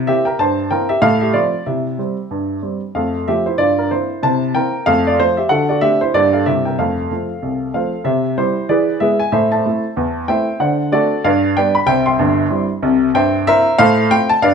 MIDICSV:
0, 0, Header, 1, 2, 480
1, 0, Start_track
1, 0, Key_signature, -1, "major"
1, 0, Tempo, 318979
1, 575, Time_signature, 4, 2, 24, 8
1, 12115, Key_signature, 0, "major"
1, 21881, End_track
2, 0, Start_track
2, 0, Title_t, "Grand piano"
2, 0, Program_c, 0, 0
2, 0, Control_c, 0, 64, 127
2, 109, Note_on_c, 0, 52, 40
2, 109, Note_on_c, 0, 76, 94
2, 111, Control_c, 0, 64, 0
2, 122, Note_on_c, 0, 58, 40
2, 124, Note_on_c, 0, 60, 48
2, 129, Note_on_c, 0, 67, 74
2, 369, Note_off_c, 0, 52, 0
2, 379, Note_off_c, 0, 58, 0
2, 379, Note_off_c, 0, 67, 0
2, 380, Note_off_c, 0, 60, 0
2, 380, Note_on_c, 0, 79, 68
2, 388, Note_off_c, 0, 76, 0
2, 400, Note_on_c, 0, 70, 65
2, 572, Note_off_c, 0, 70, 0
2, 575, Note_off_c, 0, 79, 0
2, 585, Note_on_c, 0, 43, 71
2, 591, Note_on_c, 0, 81, 89
2, 611, Note_on_c, 0, 72, 75
2, 832, Control_c, 0, 64, 127
2, 990, Note_off_c, 0, 43, 0
2, 1042, Note_off_c, 0, 72, 0
2, 1063, Note_on_c, 0, 79, 80
2, 1065, Note_off_c, 0, 81, 0
2, 1066, Note_on_c, 0, 52, 53
2, 1067, Note_on_c, 0, 58, 57
2, 1072, Control_c, 0, 64, 0
2, 1077, Note_on_c, 0, 70, 67
2, 1078, Note_on_c, 0, 60, 58
2, 1328, Note_off_c, 0, 52, 0
2, 1329, Note_off_c, 0, 58, 0
2, 1334, Note_off_c, 0, 70, 0
2, 1337, Note_off_c, 0, 60, 0
2, 1342, Note_on_c, 0, 76, 88
2, 1346, Note_off_c, 0, 79, 0
2, 1353, Note_on_c, 0, 67, 56
2, 1529, Note_off_c, 0, 67, 0
2, 1530, Note_on_c, 0, 45, 96
2, 1532, Note_on_c, 0, 77, 103
2, 1537, Note_off_c, 0, 76, 0
2, 1546, Note_on_c, 0, 69, 79
2, 1799, Control_c, 0, 64, 127
2, 1809, Note_off_c, 0, 69, 0
2, 1815, Note_on_c, 0, 76, 75
2, 1822, Note_off_c, 0, 77, 0
2, 1839, Note_on_c, 0, 67, 60
2, 1942, Note_off_c, 0, 45, 0
2, 2009, Note_on_c, 0, 74, 82
2, 2012, Note_on_c, 0, 53, 49
2, 2014, Note_off_c, 0, 67, 0
2, 2014, Note_off_c, 0, 76, 0
2, 2022, Note_on_c, 0, 60, 55
2, 2023, Note_on_c, 0, 57, 46
2, 2033, Control_c, 0, 64, 0
2, 2035, Note_on_c, 0, 65, 61
2, 2279, Note_off_c, 0, 53, 0
2, 2286, Note_off_c, 0, 60, 0
2, 2287, Note_off_c, 0, 57, 0
2, 2475, Note_off_c, 0, 65, 0
2, 2496, Note_off_c, 0, 74, 0
2, 2502, Note_on_c, 0, 76, 61
2, 2505, Note_on_c, 0, 48, 63
2, 2522, Note_on_c, 0, 67, 45
2, 2532, Note_on_c, 0, 64, 41
2, 2758, Control_c, 0, 64, 127
2, 2788, Note_off_c, 0, 64, 0
2, 2912, Note_off_c, 0, 48, 0
2, 2984, Note_on_c, 0, 55, 46
2, 2994, Note_on_c, 0, 60, 50
2, 2998, Control_c, 0, 64, 0
2, 3248, Note_off_c, 0, 55, 0
2, 3255, Note_off_c, 0, 60, 0
2, 3472, Note_on_c, 0, 43, 66
2, 3877, Note_off_c, 0, 43, 0
2, 3895, Note_off_c, 0, 67, 0
2, 3946, Note_off_c, 0, 76, 0
2, 3948, Note_on_c, 0, 55, 43
2, 3948, Note_on_c, 0, 60, 45
2, 4212, Note_off_c, 0, 55, 0
2, 4212, Note_off_c, 0, 60, 0
2, 4438, Note_on_c, 0, 77, 73
2, 4439, Note_on_c, 0, 41, 64
2, 4461, Note_on_c, 0, 69, 61
2, 4468, Note_on_c, 0, 57, 43
2, 4674, Control_c, 0, 64, 127
2, 4721, Note_off_c, 0, 57, 0
2, 4842, Note_off_c, 0, 41, 0
2, 4892, Note_off_c, 0, 69, 0
2, 4913, Note_off_c, 0, 77, 0
2, 4928, Control_c, 0, 64, 0
2, 4930, Note_on_c, 0, 57, 47
2, 4931, Note_on_c, 0, 76, 76
2, 4933, Note_on_c, 0, 53, 44
2, 4941, Note_on_c, 0, 60, 45
2, 4943, Note_on_c, 0, 67, 67
2, 5188, Note_off_c, 0, 57, 0
2, 5191, Note_off_c, 0, 53, 0
2, 5192, Note_off_c, 0, 67, 0
2, 5196, Note_off_c, 0, 60, 0
2, 5206, Note_off_c, 0, 76, 0
2, 5208, Note_on_c, 0, 72, 65
2, 5224, Note_on_c, 0, 64, 57
2, 5385, Note_on_c, 0, 43, 72
2, 5388, Note_on_c, 0, 74, 94
2, 5391, Note_off_c, 0, 64, 0
2, 5395, Note_off_c, 0, 72, 0
2, 5412, Note_on_c, 0, 65, 62
2, 5645, Control_c, 0, 64, 127
2, 5668, Note_off_c, 0, 65, 0
2, 5675, Note_off_c, 0, 74, 0
2, 5695, Note_on_c, 0, 70, 62
2, 5717, Note_on_c, 0, 62, 46
2, 5795, Note_off_c, 0, 43, 0
2, 5878, Note_off_c, 0, 62, 0
2, 5879, Note_off_c, 0, 70, 0
2, 5882, Note_on_c, 0, 52, 41
2, 5884, Control_c, 0, 64, 0
2, 5884, Note_on_c, 0, 72, 76
2, 5894, Note_on_c, 0, 58, 44
2, 5900, Note_on_c, 0, 60, 49
2, 5905, Note_on_c, 0, 64, 53
2, 6143, Note_off_c, 0, 52, 0
2, 6151, Note_off_c, 0, 58, 0
2, 6156, Note_off_c, 0, 60, 0
2, 6336, Note_off_c, 0, 64, 0
2, 6357, Note_off_c, 0, 72, 0
2, 6361, Note_on_c, 0, 48, 77
2, 6369, Note_on_c, 0, 81, 93
2, 6383, Note_on_c, 0, 72, 65
2, 6387, Note_on_c, 0, 64, 46
2, 6609, Control_c, 0, 64, 127
2, 6642, Note_off_c, 0, 64, 0
2, 6765, Note_off_c, 0, 48, 0
2, 6815, Note_off_c, 0, 72, 0
2, 6840, Note_off_c, 0, 81, 0
2, 6840, Note_on_c, 0, 52, 51
2, 6840, Note_on_c, 0, 79, 90
2, 6845, Control_c, 0, 64, 0
2, 6845, Note_on_c, 0, 58, 49
2, 6853, Note_on_c, 0, 60, 52
2, 6860, Note_on_c, 0, 70, 65
2, 7102, Note_off_c, 0, 52, 0
2, 7106, Note_off_c, 0, 58, 0
2, 7112, Note_off_c, 0, 60, 0
2, 7293, Note_off_c, 0, 70, 0
2, 7315, Note_on_c, 0, 77, 99
2, 7316, Note_off_c, 0, 79, 0
2, 7322, Note_on_c, 0, 41, 87
2, 7334, Note_on_c, 0, 69, 84
2, 7348, Note_on_c, 0, 57, 63
2, 7557, Control_c, 0, 64, 127
2, 7590, Note_off_c, 0, 69, 0
2, 7600, Note_off_c, 0, 77, 0
2, 7603, Note_off_c, 0, 57, 0
2, 7629, Note_on_c, 0, 74, 80
2, 7641, Note_on_c, 0, 65, 61
2, 7726, Note_off_c, 0, 41, 0
2, 7802, Note_off_c, 0, 65, 0
2, 7808, Note_off_c, 0, 74, 0
2, 7811, Note_on_c, 0, 57, 50
2, 7812, Note_on_c, 0, 53, 54
2, 7814, Control_c, 0, 64, 0
2, 7818, Note_on_c, 0, 72, 98
2, 7824, Note_on_c, 0, 60, 51
2, 7826, Note_on_c, 0, 65, 65
2, 8070, Note_off_c, 0, 57, 0
2, 8071, Note_off_c, 0, 53, 0
2, 8077, Note_off_c, 0, 65, 0
2, 8079, Note_off_c, 0, 60, 0
2, 8083, Note_on_c, 0, 76, 76
2, 8091, Note_off_c, 0, 72, 0
2, 8101, Note_on_c, 0, 67, 57
2, 8265, Note_on_c, 0, 78, 96
2, 8271, Note_off_c, 0, 67, 0
2, 8272, Note_on_c, 0, 50, 69
2, 8275, Note_off_c, 0, 76, 0
2, 8293, Note_on_c, 0, 69, 68
2, 8299, Note_on_c, 0, 66, 51
2, 8528, Control_c, 0, 64, 127
2, 8550, Note_off_c, 0, 69, 0
2, 8555, Note_off_c, 0, 78, 0
2, 8556, Note_off_c, 0, 66, 0
2, 8560, Note_on_c, 0, 74, 69
2, 8585, Note_on_c, 0, 66, 58
2, 8681, Note_off_c, 0, 50, 0
2, 8748, Note_on_c, 0, 76, 99
2, 8753, Note_off_c, 0, 66, 0
2, 8754, Note_off_c, 0, 74, 0
2, 8755, Note_on_c, 0, 57, 41
2, 8758, Note_on_c, 0, 60, 53
2, 8758, Note_on_c, 0, 62, 55
2, 8767, Note_on_c, 0, 67, 73
2, 8769, Control_c, 0, 64, 0
2, 9019, Note_off_c, 0, 57, 0
2, 9021, Note_off_c, 0, 60, 0
2, 9021, Note_off_c, 0, 62, 0
2, 9027, Note_off_c, 0, 67, 0
2, 9037, Note_off_c, 0, 76, 0
2, 9046, Note_on_c, 0, 72, 85
2, 9072, Note_on_c, 0, 64, 62
2, 9237, Note_off_c, 0, 72, 0
2, 9238, Note_off_c, 0, 64, 0
2, 9241, Note_on_c, 0, 55, 50
2, 9242, Note_on_c, 0, 43, 91
2, 9245, Note_on_c, 0, 74, 99
2, 9253, Note_on_c, 0, 58, 57
2, 9255, Note_on_c, 0, 67, 71
2, 9256, Note_on_c, 0, 62, 54
2, 9481, Control_c, 0, 64, 127
2, 9503, Note_off_c, 0, 55, 0
2, 9511, Note_off_c, 0, 67, 0
2, 9514, Note_off_c, 0, 62, 0
2, 9523, Note_off_c, 0, 58, 0
2, 9526, Note_off_c, 0, 74, 0
2, 9526, Note_on_c, 0, 77, 68
2, 9543, Note_on_c, 0, 69, 52
2, 9647, Note_off_c, 0, 43, 0
2, 9713, Note_off_c, 0, 69, 0
2, 9717, Note_off_c, 0, 77, 0
2, 9721, Note_on_c, 0, 55, 40
2, 9722, Note_on_c, 0, 76, 86
2, 9729, Note_on_c, 0, 48, 69
2, 9731, Note_on_c, 0, 58, 33
2, 9736, Control_c, 0, 64, 0
2, 9741, Note_on_c, 0, 60, 44
2, 9746, Note_on_c, 0, 67, 57
2, 9748, Note_on_c, 0, 64, 46
2, 9959, Control_c, 0, 64, 127
2, 9983, Note_off_c, 0, 55, 0
2, 9991, Note_off_c, 0, 58, 0
2, 9997, Note_off_c, 0, 67, 0
2, 9998, Note_off_c, 0, 60, 0
2, 10003, Note_off_c, 0, 64, 0
2, 10005, Note_off_c, 0, 76, 0
2, 10014, Note_on_c, 0, 79, 60
2, 10037, Note_on_c, 0, 70, 50
2, 10131, Note_off_c, 0, 48, 0
2, 10200, Note_off_c, 0, 70, 0
2, 10201, Note_off_c, 0, 79, 0
2, 10212, Note_on_c, 0, 41, 70
2, 10214, Note_on_c, 0, 77, 70
2, 10217, Control_c, 0, 64, 0
2, 10225, Note_on_c, 0, 69, 54
2, 10246, Note_on_c, 0, 57, 43
2, 10442, Control_c, 0, 64, 127
2, 10496, Note_off_c, 0, 57, 0
2, 10613, Note_off_c, 0, 41, 0
2, 10696, Control_c, 0, 64, 0
2, 10701, Note_on_c, 0, 53, 36
2, 10702, Note_on_c, 0, 57, 38
2, 10713, Note_on_c, 0, 60, 41
2, 10958, Note_off_c, 0, 53, 0
2, 10959, Note_off_c, 0, 57, 0
2, 10967, Note_off_c, 0, 60, 0
2, 11170, Note_on_c, 0, 36, 60
2, 11572, Note_off_c, 0, 36, 0
2, 11629, Note_off_c, 0, 77, 0
2, 11646, Note_off_c, 0, 69, 0
2, 11651, Note_on_c, 0, 77, 64
2, 11654, Note_on_c, 0, 53, 34
2, 11655, Note_on_c, 0, 57, 35
2, 11658, Note_on_c, 0, 60, 41
2, 11669, Note_on_c, 0, 69, 52
2, 11673, Note_on_c, 0, 72, 54
2, 11913, Note_off_c, 0, 53, 0
2, 11913, Note_off_c, 0, 57, 0
2, 11916, Note_off_c, 0, 60, 0
2, 12100, Note_off_c, 0, 69, 0
2, 12102, Note_off_c, 0, 72, 0
2, 12106, Note_on_c, 0, 48, 72
2, 12110, Note_on_c, 0, 76, 77
2, 12123, Note_off_c, 0, 77, 0
2, 12124, Note_on_c, 0, 72, 57
2, 12129, Note_on_c, 0, 67, 58
2, 12366, Control_c, 0, 64, 127
2, 12518, Note_off_c, 0, 48, 0
2, 12566, Note_off_c, 0, 72, 0
2, 12569, Note_off_c, 0, 67, 0
2, 12592, Note_off_c, 0, 76, 0
2, 12600, Note_on_c, 0, 55, 50
2, 12602, Note_on_c, 0, 60, 48
2, 12606, Note_on_c, 0, 72, 87
2, 12614, Control_c, 0, 64, 0
2, 12618, Note_on_c, 0, 64, 64
2, 12624, Note_on_c, 0, 67, 60
2, 12862, Note_off_c, 0, 55, 0
2, 12864, Note_off_c, 0, 60, 0
2, 13053, Note_off_c, 0, 64, 0
2, 13057, Note_off_c, 0, 67, 0
2, 13076, Note_on_c, 0, 52, 88
2, 13078, Note_on_c, 0, 74, 80
2, 13080, Note_off_c, 0, 72, 0
2, 13090, Note_on_c, 0, 71, 65
2, 13097, Note_on_c, 0, 68, 64
2, 13322, Control_c, 0, 64, 127
2, 13483, Note_off_c, 0, 52, 0
2, 13529, Note_off_c, 0, 71, 0
2, 13533, Note_off_c, 0, 68, 0
2, 13546, Note_on_c, 0, 76, 86
2, 13555, Note_on_c, 0, 56, 46
2, 13556, Note_off_c, 0, 74, 0
2, 13558, Note_on_c, 0, 59, 49
2, 13562, Note_on_c, 0, 64, 49
2, 13574, Note_on_c, 0, 68, 69
2, 13575, Note_on_c, 0, 71, 62
2, 13576, Control_c, 0, 64, 0
2, 13818, Note_off_c, 0, 56, 0
2, 13821, Note_off_c, 0, 59, 0
2, 13824, Note_off_c, 0, 64, 0
2, 13830, Note_off_c, 0, 68, 0
2, 13831, Note_off_c, 0, 71, 0
2, 13836, Note_off_c, 0, 76, 0
2, 13836, Note_on_c, 0, 80, 78
2, 14026, Note_on_c, 0, 45, 76
2, 14026, Note_on_c, 0, 76, 83
2, 14032, Note_off_c, 0, 80, 0
2, 14043, Note_on_c, 0, 69, 60
2, 14045, Note_on_c, 0, 72, 71
2, 14285, Control_c, 0, 64, 127
2, 14304, Note_off_c, 0, 69, 0
2, 14305, Note_off_c, 0, 72, 0
2, 14315, Note_off_c, 0, 76, 0
2, 14320, Note_on_c, 0, 81, 79
2, 14338, Note_on_c, 0, 76, 58
2, 14345, Note_on_c, 0, 72, 60
2, 14437, Note_off_c, 0, 45, 0
2, 14530, Note_on_c, 0, 57, 52
2, 14532, Control_c, 0, 64, 0
2, 14543, Note_on_c, 0, 60, 48
2, 14543, Note_on_c, 0, 64, 59
2, 14789, Note_off_c, 0, 57, 0
2, 14798, Note_off_c, 0, 60, 0
2, 14799, Note_off_c, 0, 64, 0
2, 14998, Note_on_c, 0, 40, 83
2, 15227, Note_off_c, 0, 76, 0
2, 15231, Note_off_c, 0, 72, 0
2, 15278, Note_off_c, 0, 81, 0
2, 15403, Note_off_c, 0, 40, 0
2, 15473, Note_on_c, 0, 79, 85
2, 15477, Note_on_c, 0, 57, 49
2, 15478, Note_on_c, 0, 60, 48
2, 15490, Note_on_c, 0, 72, 68
2, 15492, Note_on_c, 0, 76, 70
2, 15493, Note_on_c, 0, 64, 59
2, 15739, Note_off_c, 0, 57, 0
2, 15740, Note_off_c, 0, 60, 0
2, 15751, Note_off_c, 0, 64, 0
2, 15927, Note_off_c, 0, 72, 0
2, 15928, Note_off_c, 0, 76, 0
2, 15946, Note_on_c, 0, 50, 75
2, 15951, Note_off_c, 0, 79, 0
2, 15952, Note_on_c, 0, 78, 76
2, 15966, Note_on_c, 0, 74, 52
2, 15973, Note_on_c, 0, 72, 54
2, 16203, Control_c, 0, 64, 127
2, 16356, Note_off_c, 0, 50, 0
2, 16404, Note_off_c, 0, 74, 0
2, 16408, Note_off_c, 0, 72, 0
2, 16430, Note_on_c, 0, 57, 50
2, 16431, Note_off_c, 0, 78, 0
2, 16437, Note_on_c, 0, 60, 47
2, 16440, Note_on_c, 0, 74, 93
2, 16446, Note_on_c, 0, 66, 66
2, 16448, Control_c, 0, 64, 0
2, 16449, Note_on_c, 0, 62, 54
2, 16458, Note_on_c, 0, 69, 65
2, 16693, Note_off_c, 0, 57, 0
2, 16698, Note_off_c, 0, 60, 0
2, 16708, Note_off_c, 0, 62, 0
2, 16884, Note_off_c, 0, 66, 0
2, 16890, Note_off_c, 0, 69, 0
2, 16914, Note_off_c, 0, 74, 0
2, 16920, Note_on_c, 0, 43, 98
2, 16921, Note_on_c, 0, 77, 92
2, 16937, Note_on_c, 0, 74, 74
2, 16945, Note_on_c, 0, 71, 72
2, 17158, Control_c, 0, 64, 127
2, 17322, Note_off_c, 0, 43, 0
2, 17369, Note_off_c, 0, 74, 0
2, 17374, Note_off_c, 0, 71, 0
2, 17394, Note_off_c, 0, 77, 0
2, 17402, Note_on_c, 0, 55, 49
2, 17405, Note_on_c, 0, 79, 98
2, 17407, Control_c, 0, 64, 0
2, 17409, Note_on_c, 0, 59, 50
2, 17415, Note_on_c, 0, 62, 59
2, 17420, Note_on_c, 0, 71, 67
2, 17424, Note_on_c, 0, 74, 67
2, 17662, Note_off_c, 0, 55, 0
2, 17666, Note_off_c, 0, 59, 0
2, 17670, Note_off_c, 0, 71, 0
2, 17671, Note_off_c, 0, 62, 0
2, 17673, Note_off_c, 0, 74, 0
2, 17677, Note_on_c, 0, 83, 87
2, 17682, Note_off_c, 0, 79, 0
2, 17848, Note_on_c, 0, 36, 76
2, 17851, Note_on_c, 0, 48, 74
2, 17856, Note_on_c, 0, 79, 108
2, 17869, Note_off_c, 0, 83, 0
2, 17871, Note_on_c, 0, 72, 71
2, 17872, Note_on_c, 0, 76, 72
2, 18110, Control_c, 0, 64, 127
2, 18134, Note_off_c, 0, 72, 0
2, 18135, Note_off_c, 0, 76, 0
2, 18141, Note_off_c, 0, 79, 0
2, 18147, Note_on_c, 0, 84, 84
2, 18162, Note_on_c, 0, 76, 68
2, 18164, Note_on_c, 0, 79, 69
2, 18239, Note_off_c, 0, 36, 0
2, 18240, Note_off_c, 0, 48, 0
2, 18340, Note_on_c, 0, 31, 83
2, 18346, Note_on_c, 0, 43, 92
2, 18369, Control_c, 0, 64, 0
2, 18726, Note_off_c, 0, 31, 0
2, 18729, Note_off_c, 0, 43, 0
2, 18813, Note_on_c, 0, 64, 55
2, 18816, Note_on_c, 0, 60, 59
2, 18819, Note_on_c, 0, 55, 59
2, 19055, Note_off_c, 0, 76, 0
2, 19056, Note_off_c, 0, 79, 0
2, 19080, Note_off_c, 0, 64, 0
2, 19082, Note_off_c, 0, 60, 0
2, 19084, Note_off_c, 0, 55, 0
2, 19108, Note_off_c, 0, 84, 0
2, 19300, Note_on_c, 0, 36, 87
2, 19300, Note_on_c, 0, 48, 79
2, 19684, Note_off_c, 0, 36, 0
2, 19685, Note_off_c, 0, 48, 0
2, 19779, Note_on_c, 0, 43, 86
2, 19787, Note_on_c, 0, 79, 101
2, 19795, Note_on_c, 0, 72, 82
2, 19798, Note_on_c, 0, 76, 76
2, 20028, Control_c, 0, 64, 127
2, 20188, Note_off_c, 0, 43, 0
2, 20235, Note_off_c, 0, 72, 0
2, 20237, Note_off_c, 0, 76, 0
2, 20264, Note_off_c, 0, 79, 0
2, 20273, Note_on_c, 0, 58, 59
2, 20275, Note_on_c, 0, 76, 117
2, 20283, Control_c, 0, 64, 0
2, 20284, Note_on_c, 0, 60, 62
2, 20285, Note_on_c, 0, 72, 85
2, 20287, Note_on_c, 0, 64, 62
2, 20289, Note_on_c, 0, 70, 84
2, 20533, Note_off_c, 0, 58, 0
2, 20541, Note_off_c, 0, 60, 0
2, 20543, Note_off_c, 0, 64, 0
2, 20720, Note_off_c, 0, 72, 0
2, 20721, Note_off_c, 0, 70, 0
2, 20744, Note_on_c, 0, 77, 121
2, 20747, Note_off_c, 0, 76, 0
2, 20748, Note_on_c, 0, 45, 107
2, 20756, Note_on_c, 0, 72, 88
2, 20764, Note_on_c, 0, 69, 93
2, 20990, Control_c, 0, 64, 127
2, 21152, Note_off_c, 0, 45, 0
2, 21194, Note_off_c, 0, 72, 0
2, 21198, Note_off_c, 0, 69, 0
2, 21221, Note_off_c, 0, 77, 0
2, 21229, Note_on_c, 0, 57, 55
2, 21232, Note_on_c, 0, 79, 116
2, 21234, Note_on_c, 0, 60, 62
2, 21239, Control_c, 0, 64, 0
2, 21246, Note_on_c, 0, 65, 60
2, 21490, Note_off_c, 0, 57, 0
2, 21494, Note_off_c, 0, 60, 0
2, 21502, Note_off_c, 0, 65, 0
2, 21511, Note_off_c, 0, 79, 0
2, 21511, Note_on_c, 0, 81, 108
2, 21699, Note_on_c, 0, 43, 99
2, 21701, Note_off_c, 0, 81, 0
2, 21706, Note_on_c, 0, 77, 105
2, 21725, Note_on_c, 0, 71, 70
2, 21725, Note_on_c, 0, 74, 78
2, 21881, Note_off_c, 0, 43, 0
2, 21881, Note_off_c, 0, 71, 0
2, 21881, Note_off_c, 0, 74, 0
2, 21881, Note_off_c, 0, 77, 0
2, 21881, End_track
0, 0, End_of_file